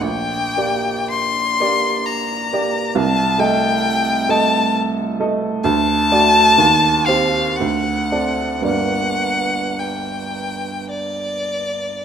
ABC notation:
X:1
M:3/4
L:1/8
Q:1/4=61
K:Gm
V:1 name="Violin"
g2 c'2 b2 | a g2 a z2 | a3 f ^f2 | ^f2 g2 d2 |]
V:2 name="Grand piano"
B,,, [B,Gd]2 [B,Gd]2 [B,Gd] | C,, [A,Ae]2 [A,Ae]2 [A,Ae] | D,, [A,^Fd] E,, [CGc] D,, [CAd] | [G,,,G,,B,Bd]6 |]